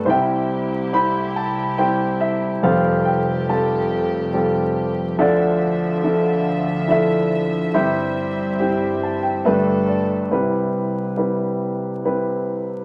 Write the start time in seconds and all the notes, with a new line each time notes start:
0.05 C2 C3 G3 C4 E4 G4 C5
0.10 C5 E5 G5
0.93 G3 C4 E4 C5 B5
1.36 A5
1.78 G3 C4 E4 C5 G5
2.21 E5
2.62 F1 F2 C3 G3 A3 C4 F4 G4 A4 C5 F5
3.05 G5
3.49 G3 C4 F4 A4 C5 A5
4.33 G3 C4 F4 A4
5.16 D2 D3 F3 D4 A4 E5
5.21 F4 D5
6.03 F3 D4 A4 E5
6.88 F3 D4 E4 A4 E5
7.72 G1 G2 G3 C4 E4 G4 C5 E5
8.60 G3 C4 E4 G4
9.03 A5
9.23 G5
9.45 G1 G2 G3 A3 B3 D4 G4 A4 B4 E5
9.88 D5
10.31 C2 C3 G3 C4 E4 B4
11.17 G3 C4 E4 B4
12.04 G3 C4 E4 B4